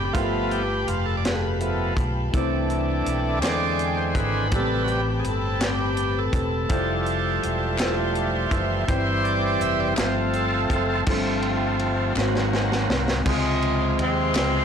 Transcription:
Already playing: F#1 A3 C4 G4 D5 G5 A5 B5
0.05 G4
0.13 G1 G2 F3 A3 B3 F4 G4 F5, kick, closed hi-hat
0.17 A#4
0.24 B4
0.51 G4, closed hi-hat
0.88 F1 F4, closed hi-hat
1.06 A4
1.17 D5
1.23 A3 F4 G4 G#4 B4, snare, closed hi-hat
1.33 A4
1.60 F3 A3 B3, closed hi-hat
1.96 B1, kick, closed hi-hat
2.32 C2 E3 A3 C4 D4 E4 D5 E5 G5, kick, closed hi-hat
2.36 C5
2.70 closed hi-hat
3.06 B1, closed hi-hat
3.42 E2 D3 E3 G#3 C4 D4 E4 C5 D5 G#5, snare, clap, closed hi-hat
3.79 closed hi-hat
3.97 C5
4.15 G#1 B4, kick, closed hi-hat
4.50 A1 A2 C3 A3 B3 C4 G4 G5 A5 B5, kick, closed hi-hat
4.54 G3 A4 B4
4.59 C4
4.84 F#4, closed hi-hat
4.92 G4
5.10 G4
5.19 G#4
5.24 G1, closed hi-hat
5.29 A4
5.59 A3 C4 G4 B4, snare, clap, closed hi-hat
5.66 G4
5.97 closed hi-hat
6.19 A4
6.33 E1, kick, closed hi-hat
6.68 F1 F3 G3 A3 E4 F4 C5 E5 A5 C6, kick, closed hi-hat
7.06 closed hi-hat
7.43 E1, closed hi-hat
7.77 A3 E4 F4 C5, snare, clap, closed hi-hat
8.15 closed hi-hat
8.51 F#1 E3 G3 A3, kick, closed hi-hat
8.87 G1 G2 E3 G3 C4 E4 C5 G5, kick, closed hi-hat
9.24 D5, closed hi-hat
9.61 F1 E5, closed hi-hat
9.80 D5
9.96 G1 F3 G3 A3 C4 F4 A4 C5 F5 G5 A5, snare, clap, closed hi-hat
10.01 C4
10.33 A4, closed hi-hat
10.70 F#1, kick, closed hi-hat
11.06 G1 G2 F3 G3 A3 B3 C4 D4 F4 A4 C5 F5 G5 A5, kick, crash
11.13 C4
11.42 ride bell
11.79 ride bell
12.15 G#1 G#2 F#3 G#3 A#3 C4 D#4 F#4 C5 D#5 F#5 G#5, snare, clap
12.35 snare
12.53 snare
12.72 snare
12.88 C2, snare
13.08 snare
13.24 C#2 C3 D#3 G#3 C4 F4 G#4, kick, crash
13.28 C3 F3 G#3 C5
13.34 F3
13.62 ride bell
13.99 D#2 C3 F3 G#3 C4, ride bell
14.34 C#2 C#3 G#3 C4 F4 B4, snare, clap, ride bell
14.44 C5

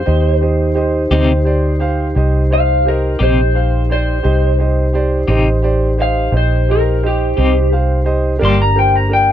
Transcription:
Already playing: C5
0.06 D#2 D#4 G4 C5 D#5
0.41 G4 C5 D#5
0.75 G4 C5 D#5
1.10 D2 C3 C4 D#4 G4 C5 D#5
1.44 G4 C5 D5
1.79 G4 C5 F5
2.15 C2 G4 C5 D#5
2.50 G4 C5 D#5 F5
2.85 G4 A#4 C5 D#5
3.19 A#1 C3 C4 D#4 G4 C5 D#5
3.54 G4 C5 F5
3.89 G4 C5 D5
4.23 C2 D#4 G4 C5 D#5
4.58 G4 C5 D#5
4.93 G4 C5 D5
5.28 A1 C3 C4 D#4 G4 C5 D#5
5.62 G4 C5 D5
5.98 G4 C5 D#5
6.02 F5
6.31 A#1 G4 C5 D#5
6.37 C5
6.68 G4 A#4 C5 D#5
7.03 G4 C5 D#5
7.36 C2 C3 C4 D#4 G4 C5 D#5
7.72 G4 C5 F5
8.04 G4 C5 D#5
8.38 G1 A#3 D4 G4 A#4 D5
8.42 G3 D4 G4 C6
8.62 A#5
8.75 G4 A#4 C5 G5
8.96 A#5
9.08 G4 A#4 D5
9.13 G5

